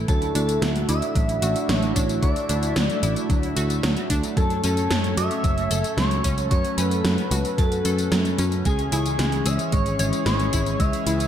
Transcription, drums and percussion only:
0.08 kick, closed hi-hat, tambourine
0.22 closed hi-hat, tambourine
0.35 closed hi-hat, tambourine
0.49 closed hi-hat, tambourine
0.62 snare, closed hi-hat, tambourine
0.76 closed hi-hat, tambourine
0.89 closed hi-hat, tambourine
1.02 closed hi-hat, tambourine
1.15 kick, closed hi-hat, tambourine
1.29 closed hi-hat, tambourine
1.42 closed hi-hat, tambourine
1.56 closed hi-hat, tambourine
1.69 snare, closed hi-hat, tambourine
1.83 closed hi-hat, tambourine
1.96 kick, closed hi-hat, tambourine
2.09 closed hi-hat, tambourine
2.23 kick, closed hi-hat, tambourine
2.36 closed hi-hat, tambourine
2.49 closed hi-hat, tambourine
2.63 closed hi-hat, tambourine
2.76 snare, closed hi-hat, tambourine
2.90 closed hi-hat, tambourine
3.03 closed hi-hat, tambourine
3.16 closed hi-hat, tambourine
3.30 kick, closed hi-hat, tambourine
3.43 closed hi-hat, tambourine
3.57 closed hi-hat, tambourine
3.70 closed hi-hat, tambourine
3.83 snare, closed hi-hat, tambourine
3.97 closed hi-hat, tambourine
4.10 kick, closed hi-hat, tambourine
4.23 closed hi-hat, tambourine
4.37 kick, closed hi-hat, tambourine
4.50 closed hi-hat, tambourine
4.64 closed hi-hat, tambourine
4.77 closed hi-hat, tambourine
4.91 snare, closed hi-hat, tambourine
5.04 closed hi-hat, tambourine
5.17 closed hi-hat, tambourine
5.31 closed hi-hat, tambourine
5.44 kick, closed hi-hat, tambourine
5.58 closed hi-hat, tambourine
5.71 closed hi-hat, tambourine
5.84 closed hi-hat, tambourine
5.98 snare, closed hi-hat, tambourine
6.11 closed hi-hat, tambourine
6.24 kick, closed hi-hat, tambourine
6.38 closed hi-hat, tambourine
6.51 kick, closed hi-hat, tambourine
6.65 closed hi-hat, tambourine
6.78 closed hi-hat, tambourine
6.91 closed hi-hat, tambourine
7.05 snare, closed hi-hat, tambourine
7.18 closed hi-hat, tambourine
7.31 closed hi-hat, tambourine
7.45 closed hi-hat, tambourine
7.58 kick, closed hi-hat, tambourine
7.72 closed hi-hat, tambourine
7.85 closed hi-hat, tambourine
7.98 closed hi-hat, tambourine
8.12 snare, closed hi-hat, tambourine
8.25 closed hi-hat, tambourine
8.38 closed hi-hat, tambourine
8.52 closed hi-hat, tambourine
8.65 kick, closed hi-hat, tambourine
8.79 closed hi-hat, tambourine
8.92 closed hi-hat, tambourine
9.06 closed hi-hat, tambourine
9.19 snare, closed hi-hat, tambourine
9.32 closed hi-hat, tambourine
9.46 closed hi-hat, tambourine
9.59 closed hi-hat, tambourine
9.72 kick, closed hi-hat, tambourine
9.86 closed hi-hat, tambourine
9.99 closed hi-hat, tambourine
10.13 closed hi-hat, tambourine
10.26 snare, closed hi-hat, tambourine
10.39 closed hi-hat, tambourine
10.53 kick, closed hi-hat, tambourine
10.66 closed hi-hat, tambourine
10.80 kick, closed hi-hat, tambourine
10.93 closed hi-hat, tambourine
11.07 closed hi-hat, tambourine
11.20 closed hi-hat, tambourine

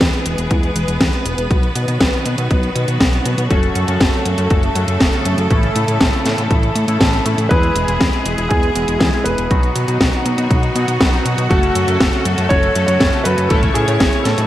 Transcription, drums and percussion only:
0.01 kick, snare, closed hi-hat
0.13 closed hi-hat
0.26 closed hi-hat
0.38 closed hi-hat
0.51 kick, closed hi-hat
0.63 closed hi-hat
0.76 closed hi-hat
0.88 closed hi-hat
1.01 kick, snare, closed hi-hat
1.13 closed hi-hat
1.26 closed hi-hat
1.38 closed hi-hat
1.51 kick, closed hi-hat
1.63 closed hi-hat
1.76 closed hi-hat
1.88 closed hi-hat
2.01 kick, snare, closed hi-hat
2.13 closed hi-hat
2.25 closed hi-hat
2.38 closed hi-hat
2.51 kick, closed hi-hat
2.63 closed hi-hat
2.76 closed hi-hat
2.88 closed hi-hat
3.01 kick, snare, closed hi-hat
3.13 closed hi-hat
3.26 closed hi-hat
3.38 closed hi-hat
3.51 kick, closed hi-hat
3.63 closed hi-hat
3.75 closed hi-hat
3.88 closed hi-hat
4.00 kick, snare, closed hi-hat
4.13 closed hi-hat
4.25 closed hi-hat
4.38 closed hi-hat
4.50 kick, closed hi-hat
4.63 closed hi-hat
4.75 closed hi-hat
4.88 closed hi-hat
5.01 kick, snare, closed hi-hat
5.13 closed hi-hat
5.25 closed hi-hat
5.38 closed hi-hat
5.50 kick, closed hi-hat
5.63 closed hi-hat
5.76 closed hi-hat
5.88 closed hi-hat
6.01 kick, snare, closed hi-hat
6.13 closed hi-hat
6.26 snare, closed hi-hat
6.38 closed hi-hat
6.51 kick, closed hi-hat
6.63 closed hi-hat
6.76 closed hi-hat
6.88 closed hi-hat
7.01 kick, snare, closed hi-hat
7.13 closed hi-hat
7.26 closed hi-hat
7.38 closed hi-hat
7.51 kick, closed hi-hat
7.63 closed hi-hat
7.76 closed hi-hat
7.88 closed hi-hat
8.01 kick, snare, closed hi-hat
8.13 closed hi-hat
8.26 closed hi-hat
8.38 closed hi-hat
8.51 kick, closed hi-hat
8.63 closed hi-hat
8.76 closed hi-hat
8.88 closed hi-hat
9.01 kick, snare, closed hi-hat
9.13 closed hi-hat
9.26 closed hi-hat
9.38 closed hi-hat
9.51 kick, closed hi-hat
9.63 closed hi-hat
9.76 closed hi-hat
9.88 closed hi-hat
10.01 kick, snare, closed hi-hat
10.13 closed hi-hat
10.26 closed hi-hat
10.38 closed hi-hat
10.51 kick, closed hi-hat
10.63 closed hi-hat
10.76 closed hi-hat
10.88 closed hi-hat
11.01 kick, snare, closed hi-hat
11.13 closed hi-hat
11.26 closed hi-hat
11.38 closed hi-hat
11.51 kick, closed hi-hat
11.63 closed hi-hat
11.75 closed hi-hat
11.88 closed hi-hat
12.01 kick, snare, closed hi-hat
12.13 closed hi-hat
12.25 closed hi-hat
12.38 closed hi-hat
12.50 kick, closed hi-hat
12.63 closed hi-hat
12.75 closed hi-hat
12.88 closed hi-hat
13.00 kick, snare, closed hi-hat
13.13 closed hi-hat
13.25 closed hi-hat
13.38 closed hi-hat
13.50 kick, closed hi-hat
13.63 kick, closed hi-hat
13.75 closed hi-hat
13.88 closed hi-hat
14.00 kick, snare, closed hi-hat
14.13 closed hi-hat
14.25 snare, closed hi-hat
14.38 closed hi-hat

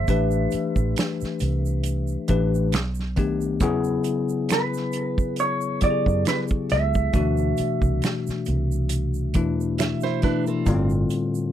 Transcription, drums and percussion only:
0.08 kick, closed hi-hat, shaker
0.31 shaker
0.51 closed hi-hat, shaker
0.76 kick, shaker
0.96 finger snap, snare, closed hi-hat, shaker
1.21 snare, shaker
1.39 closed hi-hat, shaker
1.66 shaker
1.83 closed hi-hat, shaker
2.07 shaker
2.28 kick, closed hi-hat, shaker
2.55 shaker
2.72 finger snap, snare, closed hi-hat, shaker
2.95 shaker
2.99 snare
3.16 kick, closed hi-hat
3.41 shaker
3.60 kick, closed hi-hat, shaker
3.84 shaker
4.04 closed hi-hat, shaker
4.29 shaker
4.49 finger snap, snare, closed hi-hat, shaker
4.74 snare, shaker
4.92 closed hi-hat, shaker
5.18 kick, shaker
5.36 closed hi-hat, shaker
5.61 shaker
5.81 kick, closed hi-hat, shaker
6.06 kick, shaker
6.25 finger snap, snare, closed hi-hat, shaker
6.48 kick, shaker
6.70 snare, closed hi-hat
6.94 kick, shaker
7.13 kick, closed hi-hat, shaker
7.37 shaker
7.57 closed hi-hat, shaker
7.82 kick, shaker
8.02 finger snap, snare, closed hi-hat, shaker
8.27 snare, shaker
8.45 closed hi-hat, shaker
8.72 shaker
8.89 closed hi-hat, shaker
9.14 shaker
9.34 kick, closed hi-hat, shaker
9.61 shaker
9.78 finger snap, snare, closed hi-hat, shaker
10.01 shaker
10.05 snare
10.22 kick, snare, closed hi-hat
10.47 shaker
10.66 kick, closed hi-hat, shaker
10.90 shaker
11.10 closed hi-hat, shaker
11.35 shaker

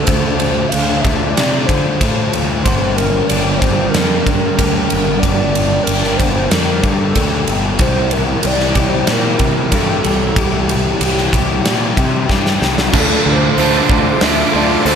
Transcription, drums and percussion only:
0.07 kick, ride
0.40 ride
0.72 ride
1.05 kick, ride
1.37 snare, ride
1.69 kick, ride
2.01 kick, ride
2.33 ride
2.66 kick, ride
2.98 ride
3.30 ride
3.62 kick, ride
3.94 snare, ride
4.26 kick, ride
4.59 kick, ride
4.90 ride
5.23 kick, ride
5.55 ride
5.87 ride
6.04 snare
6.20 kick, ride
6.51 snare, ride
6.83 kick, ride
7.15 kick, ride
7.48 ride
7.79 kick, ride
8.11 ride
8.43 ride
8.60 snare
8.75 kick, ride
9.07 snare, ride
9.39 kick, ride
9.72 kick, ride
10.04 ride
10.36 kick, ride
10.69 ride
11.01 ride
11.18 snare
11.33 kick, ride
11.65 snare, ride
11.97 kick, ride
12.29 kick, snare
12.46 snare
12.62 snare
12.78 snare
12.93 kick, crash
13.58 open hi-hat
13.89 kick
14.21 snare, open hi-hat
14.86 open hi-hat

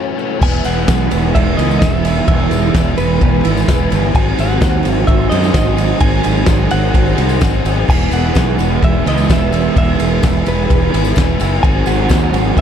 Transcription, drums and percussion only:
0.42 kick, crash
0.64 ride, tambourine
0.88 kick, snare, ride, tambourine
1.11 ride, tambourine
1.35 kick, ride
1.59 ride, tambourine
1.71 tambourine
1.82 kick, snare, ride, tambourine
1.95 tambourine
2.05 ride, tambourine
2.28 kick, ride
2.51 ride, tambourine
2.74 kick, snare, ride, tambourine
2.98 ride, tambourine
3.21 kick, ride
3.45 ride, tambourine
3.57 tambourine
3.68 kick, snare, ride, tambourine
3.81 tambourine
3.92 ride, tambourine
4.15 kick, ride
4.39 ride, tambourine
4.61 kick, snare, ride, tambourine
4.85 ride, tambourine
5.08 kick, ride
5.32 ride, tambourine
5.44 tambourine
5.54 kick, snare, ride, tambourine
5.67 tambourine
5.78 ride, tambourine
6.00 kick, ride, tambourine
6.13 tambourine
6.24 ride, tambourine
6.36 tambourine
6.46 kick, snare, ride, tambourine
6.71 ride, tambourine
6.94 kick, ride
7.07 tambourine
7.18 ride, tambourine
7.29 tambourine
7.41 kick, snare, ride, tambourine
7.55 tambourine
7.65 ride, tambourine
7.89 kick, crash
8.12 ride, tambourine
8.35 kick, snare, ride, tambourine
8.59 ride, tambourine
8.83 kick, ride
9.06 ride, tambourine
9.18 tambourine
9.30 kick, snare, ride, tambourine
9.41 tambourine
9.52 ride, tambourine
9.76 kick, ride
9.99 ride, tambourine
10.23 kick, snare, ride, tambourine
10.46 ride, tambourine
10.70 kick, ride
10.94 ride, tambourine
11.05 tambourine
11.16 kick, snare, ride, tambourine
11.40 ride, tambourine
11.64 kick, ride
11.86 ride, tambourine
12.09 kick, snare, ride, tambourine
12.34 ride, tambourine
12.57 kick, ride

